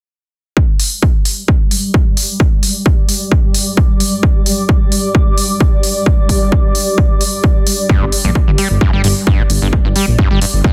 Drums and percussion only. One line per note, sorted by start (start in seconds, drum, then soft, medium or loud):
0.57 kick loud
0.80 open hi-hat loud
1.02 kick loud
1.25 open hi-hat loud
1.48 kick loud
1.71 open hi-hat loud
1.94 kick loud
2.17 open hi-hat loud
2.40 kick loud
2.63 open hi-hat loud
2.86 kick loud
3.09 open hi-hat loud
3.32 kick loud
3.54 open hi-hat loud
3.77 kick loud
4.00 open hi-hat loud
4.23 kick loud
4.46 open hi-hat loud
4.69 kick loud
4.92 open hi-hat loud
5.15 kick loud
5.38 open hi-hat loud
5.60 kick loud
5.83 open hi-hat loud
6.06 kick loud
6.29 kick medium
6.29 open hi-hat loud
6.52 kick loud
6.75 open hi-hat loud
6.98 kick loud
7.21 open hi-hat loud
7.44 kick loud
7.67 open hi-hat loud
7.89 kick loud
8.12 open hi-hat loud
8.35 kick loud
8.58 open hi-hat loud
8.81 kick loud
9.04 open hi-hat loud
9.27 kick loud
9.50 open hi-hat loud
9.73 kick loud
9.96 open hi-hat loud
10.19 kick loud
10.42 open hi-hat medium
10.64 kick loud